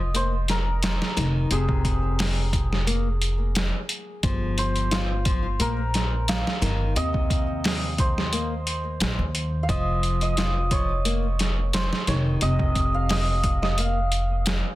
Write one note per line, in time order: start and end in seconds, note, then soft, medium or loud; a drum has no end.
0.00 0.97 F1 loud
0.00 1.51 D#5 loud
0.14 0.34 A#3 medium
0.14 0.25 C5 loud
0.14 closed hi-hat medium
0.48 3.33 A#4 loud
0.48 snare medium
0.48 closed hi-hat medium
0.83 snare loud
0.83 closed hi-hat medium
1.02 snare medium
1.17 1.47 F1 loud
1.17 1.47 D#3 loud
1.17 snare soft
1.17 closed hi-hat medium
1.51 3.70 F1 loud
1.51 2.84 C3 medium
1.51 4.55 G#4 medium
1.51 closed hi-hat medium
1.69 kick loud
1.85 kick medium
1.85 closed hi-hat medium
2.19 snare loud
2.19 open hi-hat medium
2.53 kick medium
2.53 closed hi-hat medium
2.73 snare medium
2.87 3.07 A#3 medium
2.87 closed hi-hat medium
3.22 closed hi-hat medium
3.55 snare loud
3.55 closed hi-hat medium
3.89 closed hi-hat medium
4.23 5.57 G1 loud
4.23 4.88 F3 medium
4.23 kick loud
4.23 closed hi-hat medium
4.58 7.22 C5 medium
4.58 closed hi-hat medium
4.76 closed hi-hat soft
4.91 5.24 F4 medium
4.91 snare loud
4.91 closed hi-hat medium
5.25 5.46 F3 medium
5.25 kick medium
5.25 closed hi-hat medium
5.59 6.42 A#1 medium
5.59 5.80 A#3 medium
5.59 8.44 A#4 loud
5.59 closed hi-hat medium
5.94 snare medium
5.94 closed hi-hat medium
6.28 8.51 F5 loud
6.28 snare loud
6.28 closed hi-hat medium
6.47 snare medium
6.62 6.92 G1 loud
6.62 6.93 D#3 loud
6.62 snare soft
6.62 closed hi-hat medium
6.96 9.00 D#2 loud
6.96 8.29 C3 medium
6.96 9.34 D#5 loud
6.96 closed hi-hat medium
7.14 kick medium
7.30 kick medium
7.30 closed hi-hat medium
7.64 snare loud
7.64 open hi-hat medium
7.98 10.63 C5 medium
7.98 kick loud
7.98 closed hi-hat medium
8.18 snare medium
8.33 8.53 A#3 medium
8.33 closed hi-hat medium
8.67 closed hi-hat medium
9.00 9.16 A#1 medium
9.00 snare loud
9.00 closed hi-hat medium
9.19 9.66 D#2 medium
9.35 closed hi-hat medium
9.63 11.85 F5 medium
9.69 11.88 F1 loud
9.69 10.34 F3 medium
9.69 10.22 D#5 medium
9.69 kick loud
9.69 closed hi-hat medium
10.03 closed hi-hat medium
10.21 12.42 D#5 medium
10.21 closed hi-hat soft
10.37 10.70 F4 medium
10.37 snare loud
10.37 closed hi-hat medium
10.71 10.91 F3 medium
10.71 11.80 C#5 medium
10.71 kick medium
10.71 closed hi-hat medium
11.05 11.25 A#3 medium
11.05 closed hi-hat medium
11.39 snare medium
11.39 closed hi-hat medium
11.73 12.14 C5 medium
11.73 snare loud
11.73 closed hi-hat medium
11.93 snare medium
12.07 12.38 F1 loud
12.07 12.38 D#3 loud
12.07 12.17 C#5 medium
12.07 snare soft
12.07 closed hi-hat medium
12.41 14.61 F1 medium
12.41 13.75 C3 medium
12.41 13.10 D#5 loud
12.41 closed hi-hat medium
12.59 kick medium
12.75 kick loud
12.75 closed hi-hat medium
12.94 13.78 F5 loud
13.09 13.62 D#5 loud
13.09 snare loud
13.09 open hi-hat medium
13.44 kick loud
13.44 closed hi-hat medium
13.62 13.68 D#5 loud
13.62 snare medium
13.78 13.98 A#3 medium
13.78 14.75 F5 loud
13.78 closed hi-hat medium
14.12 closed hi-hat medium
14.46 snare loud
14.46 closed hi-hat loud